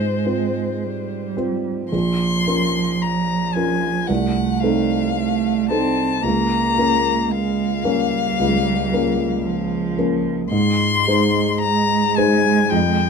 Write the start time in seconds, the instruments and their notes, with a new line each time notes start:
Already playing: grand piano G#2 C4 F4 C5, cello G#3, violin C5
0.26 grand piano C4 F4 C5
0.84 cello G3
1.37 grand piano C4 F4 C5
1.92 grand piano A#1, cello F3, violin C6
2.47 grand piano C#4 F4 A#4
3.02 violin A#5
3.54 grand piano C#4 F4 A#4, violin G#5
4.07 grand piano C2, cello A3, violin F#5
4.59 grand piano C4 D#4, violin F5
4.63 grand piano A4
5.18 cello A3
5.70 grand piano C4 D#4 A4, cello C4, violin A5
6.23 grand piano C#2, cello A#3, violin A#5
6.78 grand piano A#3 C#4 A#4
7.30 cello G#3, violin F5
7.83 cello G3, grand piano A#3 C#4 A#4
8.40 grand piano C#2
8.93 grand piano A#3 C#4 A#4
9.45 cello F3
9.98 grand piano A#3 C#4 A#4
10.51 grand piano G#2, cello G#3, violin C6
11.07 grand piano G#3 D#4 C5
11.61 violin A#5
12.17 grand piano G#3 D#4 C5, violin G#5
12.70 grand piano F2, violin G5